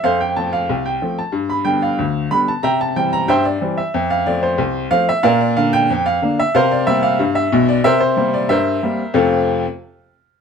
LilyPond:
<<
  \new Staff \with { instrumentName = "Upright piano" } { \time 2/4 \key f \major \tempo 4 = 92 <a' c'' f''>16 g''16 a''16 f''8 g''8 a''16 | r16 b''16 g''16 f''8. b''16 a''16 | <e'' g'' bes''>16 a''16 g''16 bes''16 <c'' e'' g''>16 d''8 e''16~ | e''16 f''16 d''16 c''8. f''16 e''16 |
<bes' d'' f''>16 d''16 f''16 g''8 f''8 e''16 | <bes' c'' f''>16 d''16 e''16 f''8 e''8 d''16 | <bes' c'' e''>16 c''8 d''16 <bes' c'' e''>4 | <f, c a c' f' a' f''>8 r4. | }
  \new Staff \with { instrumentName = "Upright piano" } { \clef bass \time 2/4 \key f \major f,8 <f a c'>8 c,8 <f a c'>8 | g,8 <d g b>8 d,8 <d g b>8 | c8 <e g c'>8 g,8 <e g c'>8 | f,8 <f a c'>8 c,8 <f a c'>8 |
bes,8 <d bes d'>8 f,8 <d bes d'>8 | c8 <g bes c'>8 g,8 <b,, b,>8 | c8 <g bes c'>8 g,8 <g bes c'>8 | r2 | }
>>